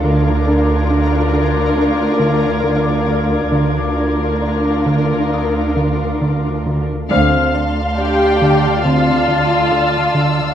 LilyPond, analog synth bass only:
\new Staff \with { instrumentName = "Analog synth bass" } { \clef bass \time 4/4 \key d \minor \tempo 4 = 69 d8 d'8 d'8 d8 d'8 d8 d8 d8 | d8 d'8 d'8 d8 d'8 d8 d8 d8 | d8 d'8 d'8 d8 d8 d8 d8 d8 | }